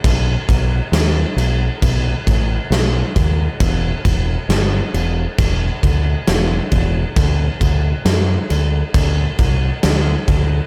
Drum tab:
CC |xxxxxxxx|xxxxxxxx|xxxxxxxx|
SD |--o---o-|--o---o-|--o---o-|
BD |oo--oo-o|oo--oo-o|oo--oo-o|